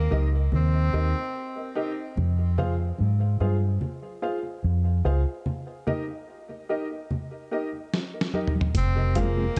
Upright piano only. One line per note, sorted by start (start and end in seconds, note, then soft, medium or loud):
0.11 0.26 D#4 medium
0.11 0.26 G4 medium
0.11 0.26 A#4 medium
0.11 0.26 D#5 loud
0.33 0.41 A#4 soft
0.33 0.40 D#5 soft
0.93 1.08 D#4 medium
0.93 1.08 G4 medium
0.93 1.08 A#4 medium
0.93 1.09 D#5 medium
1.57 1.64 A#4 soft
1.57 1.64 D#5 soft
1.75 1.90 D#4 loud
1.75 1.91 G4 medium
1.75 1.91 A#4 medium
1.75 1.91 D#5 medium
2.58 2.73 F4 medium
2.58 2.73 G#4 medium
2.58 2.73 C5 medium
2.58 2.73 F5 loud
3.40 3.55 F4 medium
3.40 3.55 G#4 medium
3.40 3.55 C5 medium
3.40 3.56 F5 medium
4.22 4.37 F4 medium
4.22 4.37 G#4 medium
4.22 4.37 C5 medium
4.22 4.38 F5 medium
5.05 5.19 F4 medium
5.05 5.20 G#4 medium
5.05 5.20 C5 medium
5.05 5.20 F5 loud
5.87 6.02 D#4 medium
5.87 6.02 G4 medium
5.87 6.02 A#4 medium
5.87 6.02 D#5 loud
6.69 6.84 D#4 medium
6.69 6.84 G4 medium
6.69 6.84 A#4 medium
6.69 6.85 D#5 medium
6.91 6.99 A#4 soft
6.91 6.99 D#5 soft
7.51 7.66 D#4 medium
7.51 7.66 G4 medium
7.51 7.67 A#4 medium
7.51 7.67 D#5 medium
8.14 8.22 A#4 soft
8.14 8.22 D#5 soft
8.34 8.48 D#4 medium
8.34 8.49 G4 medium
8.34 8.49 A#4 medium
8.34 8.49 D#5 medium
9.15 9.30 F4 loud
9.15 9.31 G#4 medium
9.15 9.31 C5 medium
9.15 9.31 F5 loud